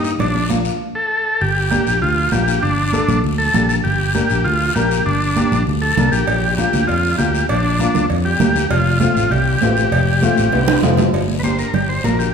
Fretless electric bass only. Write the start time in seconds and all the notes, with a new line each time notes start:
Already playing: G2
0.20 A#1
1.42 G1
1.87 A#1
2.02 D2
2.33 A#1
2.63 G1
3.09 A#1
3.24 D2
3.55 A#1
3.85 G1
4.30 A#1
4.45 D2
4.76 A#1
5.07 G1
5.52 A#1
5.67 D2
5.97 C2
6.13 A#1
6.28 A#1
6.74 D2
6.90 F2
7.19 D2
7.50 A#1
7.95 D2
8.10 F2
8.41 D2
8.71 F1
9.16 A1
9.31 C2
9.61 A1
9.92 F1
10.38 A1
10.53 C2
10.84 F1
11.13 G1
11.74 G1
12.05 A#1